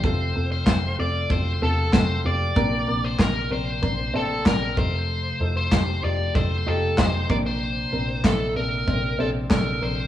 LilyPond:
<<
  \new Staff \with { instrumentName = "Lead electric guitar" } { \time 4/4 \key f \major \tempo 4 = 95 c''8. c''8. d''8 c''8 a'8 c''8 d''8~ | d''8. c''16 bes'8 c''4 a'8 bes'8 c''8~ | c''8. c''8. d''8 c''8 a'8 c''8 d''16 c''16~ | c''4 a'8 bes'4 a'8 bes'8 c''8 | }
  \new Staff \with { instrumentName = "Upright piano" } { \time 4/4 \key f \major <c' f' a'>8 <c' f' a'>8 <c' f' c''>8 <c' f' a'>8 <c' f' a'>8 <c' f' a'>8 <c' f' a'>8 <c' f' g'>8 | <c' d' bes'>8 <c' d' bes'>8 <c' d' bes'>8 <c' d' bes'>8 <c' d' bes'>8 <c' d' c''>8 <c' d' bes'>8 <ees' f' a'>8~ | <ees' f' a'>8 <ees' f' a'>8 <ees' f' g'>8 <ees' f' g'>8 <ees' f' a'>8 <ees' f' g'>8 <ees' f' c''>8 <c' d' bes'>8~ | <c' d' bes'>8 <c' d' bes'>8 <c' d' e'>8 <c' d' a'>8 <c' d' c''>8 <c' d' c''>8 <c' d' a'>8 <c' d' bes'>8 | }
  \new Staff \with { instrumentName = "Upright piano" } { \clef bass \time 4/4 \key f \major c4. r2 r8 | <bes, f>4. r2 c8~ | c4 r2 r8 <bes, f>8~ | <bes, f>4 r2. | }
  \new Staff \with { instrumentName = "Tonewheel organ" } { \time 4/4 \key f \major <a f'>1 | <bes d'>2.~ <bes d'>8 <a ees'>8~ | <a ees'>2.~ <a ees'>8 <bes d'>8~ | <bes d'>1 | }
  \new Staff \with { instrumentName = "Tonewheel organ" } { \clef bass \time 4/4 \key f \major << { f1~ | f1~ | f2.~ f8 f8~ | f1 | } \\ { c1 | c1~ | c2.~ c8 c8~ | c1 | } >> }
  \new Staff \with { instrumentName = "Picked electric bass" } { \clef bass \time 4/4 \key f \major f,,8 f,,8 f,,8 f,,8 f,,8 e,,8 f,,8 f,,8 | bes,,8 bes,,8 bes,,8 bes,,8 bes,,8 a,,8 bes,,8 f,,8~ | f,,8 f,,8 f,,8 f,,8 f,,8 f,,8 f,,8 bes,,8~ | bes,,8 bes,,8 bes,,8 bes,,8 bes,,8 bes,,8 bes,,8 bes,,8 | }
  \new DrumStaff \with { instrumentName = "Drums" } \drummode { \time 4/4 bd4 <hc bd sn>4 bd4 <hc bd sn>4 | bd4 <hc bd sn>4 bd4 <hc bd sn>8 bd8 | r4 <hc bd sn>4 bd4 <hc bd sn>8 bd8 | r4 <hc bd sn>4 bd4 <hc bd sn>4 | }
>>